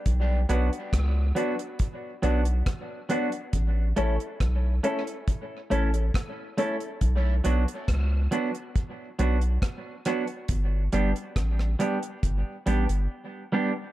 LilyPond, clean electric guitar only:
\new Staff \with { instrumentName = "Clean electric guitar" } { \time 4/4 \key b \minor \tempo 4 = 69 r8 <fis b d' fis'>8 r8 <fis b d' fis'>8 r8 <fis b d' fis'>8 r8 <fis b d' fis'>8 | r8 <a cis' e' a'>8 r8 <a cis' e' a'>8 r8 <a cis' e' a'>8 r8 <a cis' e' a'>8 | r8 <fis b d' fis'>8 r8 <fis b d' fis'>8 r8 <fis b d' fis'>8 r8 <fis b d' fis'>8 | r8 <g b d' g'>8 r8 <g b d' g'>8 r8 <g b d' g'>8 r8 <g b d' g'>8 | }